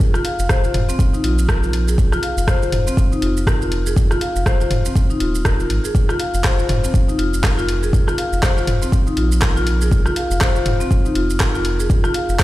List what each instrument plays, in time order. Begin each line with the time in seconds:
Already playing: sub bass F1
0.00 kick, shaker
0.14 marimba F4, cross-stick, shaker
0.25 marimba F5, open hi-hat
0.39 sub bass F1, shaker
0.49 marimba C5, kick, cross-stick, shaker
0.64 marimba F4, shaker
0.74 sub bass F1, mid tom, open hi-hat
0.89 marimba C4, shaker
0.99 kick, shaker
1.13 marimba D#4, shaker
1.24 sub bass A#1, marimba F4, open hi-hat
1.39 shaker
1.49 marimba A#4, kick, cross-stick, shaker
1.63 marimba F4, shaker
1.73 open hi-hat
1.88 marimba G#4, shaker
1.98 kick, shaker
2.12 marimba F4, cross-stick, shaker
2.23 marimba F5, open hi-hat
2.37 sub bass F1, shaker
2.48 marimba C5, kick, cross-stick, shaker
2.62 marimba F4, shaker
2.72 sub bass F1, mid tom, open hi-hat
2.87 marimba C4, shaker
2.97 sub bass F1, kick, shaker
3.12 marimba D#4, shaker
3.22 sub bass F1, marimba F4, open hi-hat
3.37 shaker
3.47 marimba A#4, kick, cross-stick, shaker
3.61 marimba F4, shaker
3.72 open hi-hat
3.86 marimba G#4, shaker
3.96 kick, shaker
4.11 marimba F4, cross-stick, shaker
4.21 marimba F5, open hi-hat
4.36 sub bass F1, shaker
4.46 marimba C5, kick, cross-stick, shaker
4.60 marimba F4, shaker
4.71 sub bass F1, mid tom, open hi-hat
4.85 marimba C4, shaker
4.96 kick, shaker
5.10 marimba D#4, shaker
5.20 sub bass D#1, marimba F4, open hi-hat
5.35 shaker
5.45 marimba A#4, kick, cross-stick, shaker
5.60 marimba F4, shaker
5.70 sub bass G#1, open hi-hat
5.84 marimba G#4, shaker
5.95 kick, shaker
6.09 marimba F4, cross-stick, shaker
6.20 marimba F5, open hi-hat
6.34 sub bass F1, shaker
6.44 marimba C5, kick, cross-stick, clap, shaker
6.59 marimba F4, shaker
6.69 sub bass F1, mid tom, open hi-hat
6.84 marimba C4, shaker
6.94 sub bass F1, kick, shaker
7.08 marimba D#4, shaker
7.18 sub bass F1, marimba F4, open hi-hat
7.34 shaker
7.43 marimba A#4, kick, cross-stick, clap, shaker
7.58 marimba F4, shaker
7.69 open hi-hat
7.83 marimba G#4, shaker
7.93 kick, shaker
8.07 marimba F4, cross-stick, shaker
8.18 marimba F5, open hi-hat
8.32 sub bass F1, shaker
8.43 marimba C5, kick, cross-stick, clap, shaker
8.57 marimba F4, shaker
8.67 sub bass F1, mid tom, open hi-hat
8.82 marimba C4, shaker
8.92 kick, shaker
9.07 marimba D#4, shaker
9.17 sub bass A#1, marimba F4, open hi-hat
9.32 shaker
9.42 marimba A#4, kick, cross-stick, clap, shaker
9.56 marimba F4, shaker
9.67 open hi-hat
9.81 marimba G#4, shaker
9.92 kick, shaker
10.06 marimba F4, cross-stick, shaker
10.16 marimba F5, open hi-hat
10.31 sub bass F1, shaker
10.41 marimba C5, kick, cross-stick, clap, shaker
10.56 marimba F4, shaker
10.66 sub bass F1, mid tom, open hi-hat
10.80 marimba C4, shaker
10.91 sub bass F1, kick, shaker
11.05 marimba D#4, shaker
11.15 sub bass F1, marimba F4, open hi-hat
11.30 shaker
11.40 marimba A#4, kick, cross-stick, clap, shaker
11.55 marimba F4, shaker
11.65 open hi-hat
11.79 marimba G#4, shaker
11.90 kick, shaker
12.04 marimba F4, cross-stick, shaker
12.14 marimba F5, open hi-hat
12.29 sub bass F1, shaker
12.39 marimba C5, kick, cross-stick, clap, shaker